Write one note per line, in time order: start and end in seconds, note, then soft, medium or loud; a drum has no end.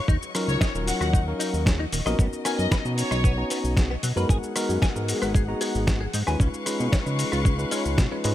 0.00 2.15 C#6 medium
0.08 0.17 D#2 loud
0.08 2.17 F#3 medium
0.08 0.15 D#4 medium
0.08 4.25 D#5 medium
0.08 kick loud
0.08 shaker soft
0.22 shaker soft
0.35 0.71 F#3 loud
0.35 0.71 C#4 medium
0.35 0.71 D#4 medium
0.35 0.71 F4 medium
0.35 0.72 A#4 loud
0.35 cross-stick medium
0.35 open hi-hat loud
0.35 shaker medium
0.48 0.57 C#2 medium
0.48 0.56 C#5 medium
0.48 shaker soft
0.61 0.70 C#5 medium
0.61 0.65 D#5 medium
0.61 kick loud
0.61 snare loud
0.61 shaker soft
0.74 0.92 D#1 medium
0.74 1.24 F#3 medium
0.74 1.24 C#4 medium
0.74 1.24 D#4 medium
0.74 1.24 F4 medium
0.74 1.24 A#4 medium
0.74 shaker soft
0.87 0.96 F#5 medium
0.87 open hi-hat loud
0.87 shaker medium
1.00 1.33 D#2 medium
1.00 1.07 F#4 medium
1.00 1.09 F#5 medium
1.00 cross-stick medium
1.00 shaker soft
1.13 1.20 D#4 medium
1.13 kick loud
1.13 shaker soft
1.27 1.63 F#3 loud
1.27 1.63 C#4 medium
1.27 1.63 D#4 medium
1.27 1.64 A#4 loud
1.27 1.64 F5 medium
1.39 1.46 D#4 loud
1.39 open hi-hat loud
1.39 shaker medium
1.53 1.86 D#2 medium
1.53 shaker soft
1.66 1.77 F#3 loud
1.66 1.77 C#4 medium
1.66 1.77 D#4 medium
1.66 1.77 F4 medium
1.66 1.77 G#4 loud
1.66 kick loud
1.66 snare loud
1.66 shaker soft
1.79 1.83 D#4 medium
1.92 2.02 D#1 medium
1.92 1.97 A#3 medium
1.92 open hi-hat loud
1.92 shaker medium
2.06 2.15 A#1 loud
2.06 2.42 B3 medium
2.06 2.42 C#4 medium
2.06 2.42 D#4 medium
2.06 2.42 F#4 medium
2.06 2.42 A#4 loud
2.06 2.16 D#5 medium
2.06 cross-stick medium
2.06 shaker soft
2.19 2.28 B1 loud
2.19 2.25 B3 medium
2.19 kick loud
2.19 shaker soft
2.33 shaker soft
2.45 2.82 B3 loud
2.45 2.82 C#4 medium
2.45 2.82 D#4 medium
2.45 2.82 F#4 medium
2.45 2.82 A#4 loud
2.45 2.56 G#5 medium
2.45 cross-stick medium
2.45 open hi-hat loud
2.45 shaker medium
2.58 2.67 F#2 medium
2.58 2.67 D#5 medium
2.58 shaker soft
2.71 2.75 B4 medium
2.71 2.80 D#5 medium
2.71 kick loud
2.71 snare loud
2.71 shaker soft
2.84 3.03 B2 medium
2.84 3.34 B3 medium
2.84 3.34 C#4 medium
2.84 3.34 D#4 medium
2.84 3.35 F#4 medium
2.84 3.35 A#5 loud
2.84 shaker soft
2.98 3.38 C#5 medium
2.98 open hi-hat loud
2.98 shaker medium
3.11 3.44 B1 medium
3.11 3.18 D#4 medium
3.11 cross-stick medium
3.11 shaker soft
3.24 3.31 B3 medium
3.24 kick loud
3.24 shaker soft
3.37 3.73 B3 loud
3.37 3.74 C#4 medium
3.37 3.74 D#4 medium
3.37 3.74 F#4 medium
3.37 3.74 A#5 loud
3.50 3.57 B3 loud
3.50 open hi-hat loud
3.50 shaker medium
3.64 3.96 B1 medium
3.64 shaker soft
3.76 3.87 B3 loud
3.76 3.88 C#4 medium
3.76 3.88 D#4 medium
3.76 3.88 F#4 medium
3.76 3.88 G#4 loud
3.76 kick loud
3.76 snare loud
3.76 shaker soft
3.90 3.94 B3 medium
4.03 4.12 B2 medium
4.03 4.07 F#3 medium
4.03 open hi-hat loud
4.03 shaker medium
4.16 4.25 F#2 loud
4.16 4.52 G#3 loud
4.16 4.52 B3 medium
4.16 4.53 D#4 medium
4.16 4.53 F#4 medium
4.16 4.53 A#4 loud
4.16 4.26 B4 medium
4.16 shaker soft
4.29 4.38 G#1 loud
4.29 6.38 G#4 medium
4.29 4.36 G#4 medium
4.29 6.38 F#5 medium
4.29 kick loud
4.29 shaker soft
4.43 shaker soft
4.55 4.92 G#3 medium
4.55 4.92 B3 medium
4.55 4.92 D#4 medium
4.55 4.92 F#4 medium
4.55 4.92 A#4 loud
4.55 cross-stick medium
4.55 open hi-hat loud
4.55 shaker medium
4.69 4.78 F#2 medium
4.69 shaker soft
4.82 4.86 G#5 medium
4.82 kick loud
4.82 snare loud
4.82 shaker soft
4.95 5.13 G#2 medium
4.95 5.45 G#3 medium
4.95 5.45 B3 medium
4.95 5.45 D#4 medium
4.95 5.45 F#4 medium
4.95 5.45 A#4 loud
4.95 shaker soft
5.08 open hi-hat loud
5.08 shaker medium
5.22 5.55 G#1 medium
5.22 5.28 B4 medium
5.22 cross-stick medium
5.22 shaker soft
5.35 5.41 G#4 medium
5.35 kick loud
5.35 shaker soft
5.48 5.84 G#3 loud
5.48 5.84 B3 medium
5.48 5.84 D#4 medium
5.48 5.84 F#4 medium
5.48 5.84 A#5 loud
5.61 5.68 G#4 loud
5.61 open hi-hat loud
5.61 shaker medium
5.75 6.07 G#1 medium
5.75 shaker soft
5.87 5.98 G#3 loud
5.87 5.98 B3 medium
5.87 5.98 D#4 medium
5.87 5.98 F#4 medium
5.87 5.98 G#4 loud
5.87 kick loud
5.87 snare loud
5.87 shaker soft
6.01 6.05 G#4 medium
6.13 6.23 G#2 medium
6.13 6.18 D#4 medium
6.13 open hi-hat loud
6.13 shaker medium
6.26 6.36 D#2 loud
6.26 6.63 G#3 medium
6.26 6.63 C#4 medium
6.26 6.63 D#4 medium
6.26 6.63 F4 medium
6.26 6.63 B4 loud
6.26 6.37 G#5 medium
6.26 cross-stick medium
6.26 shaker soft
6.40 6.49 C#2 loud
6.40 6.47 C#4 medium
6.40 8.35 B4 medium
6.40 8.35 F5 medium
6.40 8.35 C#6 medium
6.40 kick loud
6.40 shaker soft
6.54 shaker soft
6.65 7.02 G#3 loud
6.65 7.02 C#4 medium
6.65 7.03 D#4 medium
6.65 7.03 F4 medium
6.65 7.03 B4 loud
6.65 cross-stick medium
6.65 open hi-hat loud
6.65 shaker medium
6.80 6.89 B2 medium
6.80 shaker soft
6.92 6.97 C#5 medium
6.92 kick loud
6.92 snare loud
6.92 shaker soft
7.05 7.24 C#3 medium
7.05 7.55 G#3 medium
7.05 7.55 C#4 medium
7.05 7.55 D#4 medium
7.05 7.55 F4 medium
7.05 7.56 B4 medium
7.05 shaker soft
7.19 open hi-hat loud
7.19 shaker medium
7.32 7.65 C#2 medium
7.32 7.39 F4 medium
7.32 cross-stick medium
7.32 shaker soft
7.45 7.52 C#4 medium
7.45 kick loud
7.45 shaker soft
7.58 7.69 G#3 medium
7.58 7.69 C#4 medium
7.58 7.69 D#4 medium
7.58 7.69 F4 medium
7.58 7.69 B4 loud
7.58 shaker soft
7.71 8.08 G#3 medium
7.71 8.08 C#4 medium
7.71 7.78 C#4 loud
7.71 8.08 D#4 medium
7.71 8.08 F4 medium
7.71 8.08 C#5 loud
7.71 open hi-hat loud
7.71 shaker medium
7.85 7.97 C#2 medium
7.85 shaker soft
7.98 8.07 B2 medium
7.98 kick loud
7.98 snare loud
7.98 shaker soft
8.11 8.22 G#3 medium
8.11 8.22 C#4 medium
8.11 8.15 C#4 medium
8.11 8.22 D#4 medium
8.11 8.22 F4 medium
8.11 8.22 B4 medium
8.24 8.35 G#2 loud
8.24 8.35 G#3 medium
8.24 8.28 G#3 medium
8.24 8.35 C#4 medium
8.24 8.35 D#4 medium
8.24 8.35 F4 medium
8.24 8.35 B4 loud
8.24 open hi-hat loud
8.24 shaker medium